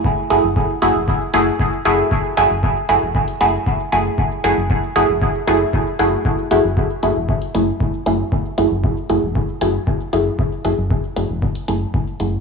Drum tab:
HH |--x---x---x---x-|--x---x--xx---x-|--x---x---x---x-|--x---x--xx---x-|
BD |o---o---o---o---|o---o---o---o---|o---o---o---o---|o---o---o---o---|

HH |--x---x---x---x-|--x---x--xx---x-|
BD |o---o---o---o---|o---o---o---o---|